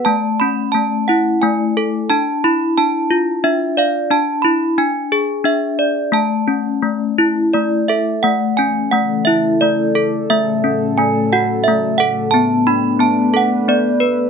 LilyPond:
<<
  \new Staff \with { instrumentName = "Handbells" } { \time 3/4 \key a \major \tempo 4 = 88 << { a''8 b''8 a''8 fis''8 gis''4 | a''8 b''8 a''4 e''8 f''8 | a''8 b''8 gis''4 e''4 | a''2 d''8 e''8 |
fis''8 gis''8 fis''8 e''8 d''4 | e''4 gis''8 fis''8 e''8 fis''8 | a''8 b''8 a''8 fis''8 d''4 | } \\ { a8 cis'8 a8 e'8 a8 a'8 | d'8 e'8 d'8 f'8 d'8 d''8 | d'8 e'8 d'8 gis'8 d'8 d''8 | a8 cis'8 a8 e'8 a8 a'8 |
a8 cis'8 a8 e'8 a8 a'8 | a8 cis'8 a8 fis'8 a8 a'8 | b8 d'8 b8 a'8 b8 b'8 | } >> }
  \new Staff \with { instrumentName = "Ambient pad" } { \clef bass \time 3/4 \key a \major << { r2. | r2. | r2. | r2. |
<cis a'>2.~ | <cis a'>2. | <d' b'>2. | } \\ { r2. | r2. | r2. | r2. |
e2. | <a, fis>2. | a2. | } >> }
>>